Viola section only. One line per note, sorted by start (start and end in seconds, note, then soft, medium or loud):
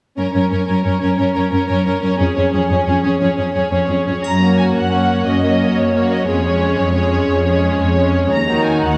0.17 0.33 C#4 soft
0.34 0.50 C#4 soft
0.51 0.67 C#4 soft
0.68 0.83 C#4 soft
0.85 1.00 C#4 soft
1.01 1.17 C#4 soft
1.18 1.34 C#4 soft
1.36 1.51 C#4 soft
1.52 1.68 C#4 soft
1.69 1.85 C#4 soft
1.87 2.01 C#4 soft
2.03 2.18 C#4 soft
2.19 2.35 C#4 soft
2.36 2.51 C#4 soft
2.53 2.68 C#4 soft
2.69 2.85 C#4 soft
2.87 3.02 C#4 soft
3.04 3.19 C#4 soft
3.20 3.36 C#4 soft
3.37 3.53 C#4 soft
3.54 3.70 C#4 soft
3.71 3.88 C#4 soft
3.89 4.05 C#4 soft
4.06 4.23 C#4 soft
4.40 4.90 A#3 soft
4.40 4.90 C#4 soft
4.91 5.42 A#3 soft
4.91 5.42 C#4 soft
5.43 5.92 A#3 soft
5.43 5.92 C#4 soft
5.94 6.27 A#3 soft
5.94 6.26 C#4 soft
6.27 6.43 G#3 soft
6.27 6.42 C#4 soft
6.44 6.94 G#3 soft
6.44 6.94 C#4 soft
6.96 7.46 G#3 soft
6.96 7.45 C#4 soft
7.47 7.96 G#3 soft
7.47 7.96 C#4 soft
7.97 8.30 G#3 soft
7.97 8.30 C#4 soft
8.48 8.97 D#3 soft
8.48 8.97 D#4 soft